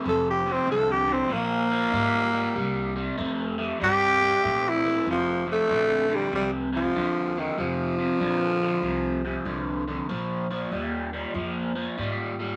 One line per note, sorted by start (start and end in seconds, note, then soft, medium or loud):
0.04 0.57 F1 loud
0.04 0.42 F2 medium
0.04 0.42 C3 medium
0.08 0.27 A4 medium
0.30 0.54 G4 medium
0.46 0.66 F2 medium
0.46 0.66 C3 medium
0.52 0.70 C4 medium
0.67 1.19 C2 medium
0.67 1.04 F2 medium
0.67 1.05 D3 medium
0.71 0.93 A4 loud
0.91 1.14 G4 medium
1.07 1.28 F2 medium
1.07 1.27 D3 medium
1.12 1.33 C4 medium
1.28 1.82 A#1 medium
1.28 1.66 A#2 medium
1.28 1.67 F3 medium
1.32 3.15 A#3 loud
1.71 1.91 A#2 medium
1.71 1.91 F3 medium
1.92 2.44 G#2 medium
1.92 2.30 A#2 medium
1.92 2.30 G3 medium
2.33 2.53 A#2 medium
2.33 2.53 G3 medium
2.55 3.07 C2 loud
2.55 2.92 C3 medium
2.55 2.93 G3 loud
2.96 3.16 C3 medium
2.96 3.16 G3 medium
3.17 3.70 F2 medium
3.17 3.55 C3 medium
3.17 3.55 A3 loud
3.58 3.78 C3 medium
3.58 3.78 A3 medium
3.80 4.33 G2 loud
3.80 4.17 C3 medium
3.80 4.18 G3 loud
3.80 4.70 G4 loud
4.21 4.41 C3 medium
4.21 4.42 G3 medium
4.43 4.96 A#2 medium
4.43 4.80 C3 medium
4.43 4.80 A3 medium
4.69 5.08 E4 loud
4.84 5.04 C3 medium
4.84 5.05 A3 medium
5.06 5.58 F1 medium
5.06 5.43 F2 medium
5.06 5.43 C3 medium
5.10 5.47 F3 loud
5.46 5.66 F2 medium
5.46 5.67 C3 medium
5.52 6.16 A3 loud
5.67 6.21 A#1 medium
5.67 6.05 F2 medium
5.67 6.06 D3 medium
6.09 6.29 F2 medium
6.09 6.30 D3 medium
6.14 6.34 G3 loud
6.31 6.84 C2 medium
6.31 6.68 F2 medium
6.31 6.69 C3 medium
6.31 6.51 G3 medium
6.73 6.93 F2 medium
6.73 6.93 C3 medium
6.73 7.41 F3 loud
6.94 7.46 D#2 medium
6.94 7.32 F2 medium
6.94 7.32 D3 medium
7.36 7.56 F2 medium
7.36 7.56 D3 medium
7.36 7.59 D#3 medium
7.58 8.09 F1 medium
7.58 7.94 F2 medium
7.58 7.95 C3 medium
7.58 9.84 F3 medium
7.98 8.18 F2 medium
7.98 8.19 C3 medium
8.20 8.72 A#1 medium
8.20 8.57 F2 medium
8.20 8.57 D3 medium
8.62 8.82 F2 medium
8.62 8.82 D3 medium
8.82 9.34 C2 medium
8.82 9.20 F2 medium
8.82 9.20 C3 medium
9.25 9.44 F2 medium
9.25 9.45 C3 medium
9.45 9.97 C2 medium
9.45 9.83 F2 medium
9.45 9.83 D3 medium
9.88 10.07 F2 medium
9.88 10.07 D3 medium
10.09 10.60 A#1 medium
10.09 10.46 A#2 medium
10.09 10.46 F3 loud
10.51 10.70 A#2 medium
10.51 10.70 F3 medium
10.71 11.23 D#2 medium
10.71 11.09 A#2 medium
10.71 11.09 G3 medium
11.13 11.33 A#2 medium
11.13 11.33 G3 medium
11.34 11.86 F2 medium
11.34 11.72 A#2 medium
11.34 11.72 F3 medium
11.75 11.95 A#2 medium
11.75 11.95 F3 medium
11.98 12.49 G#2 medium
11.98 12.35 A#2 medium
11.98 12.35 G3 medium
12.39 12.56 A#2 medium
12.39 12.56 G3 medium